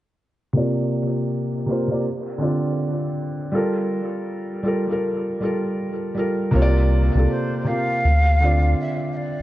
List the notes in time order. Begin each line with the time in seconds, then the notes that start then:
0.53 C3 A#3 F4
0.57 D5
1.66 C3 A#3 F4
1.71 C5
1.87 C3 A#3 F4
1.92 D5
2.38 D3 C4 F4
2.43 D5
3.52 G3 F4 A4
3.56 A#4
4.63 G3 F4 A4
4.67 A#4
4.88 G3 F4 A4
4.92 A#4
5.40 G3 F4 A4
5.45 A#4
6.14 G3 F4 A4
6.19 A#4
6.51 C2 C3 A#3 F4
6.55 C#5
6.62 D5
7.15 C2 C3 A#3 F4
7.19 A4
7.29 C5
7.64 C3 A#3 F4 F5
7.69 G4
8.04 D2
8.40 D3 C4 F4
8.45 D5
8.80 E5
9.12 E5
9.17 D5